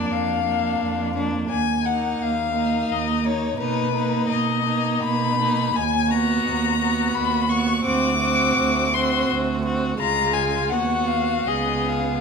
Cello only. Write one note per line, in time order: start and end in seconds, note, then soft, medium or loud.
0.10 0.74 F2 soft
0.80 1.43 F2 soft
1.50 2.13 D#2 soft
2.19 2.82 D#2 soft
2.88 3.51 D#2 soft
3.58 4.21 B2 soft
4.29 4.96 B2 soft
5.03 5.68 B2 soft
5.76 6.38 D#2 soft
6.46 7.08 D#2 soft
7.16 7.78 D#2 soft
7.85 8.49 D2 soft
8.57 9.20 D2 soft
9.29 9.92 D2 soft
10.00 10.74 C#2 soft
10.73 11.47 D#2 soft
11.48 12.21 C#2 soft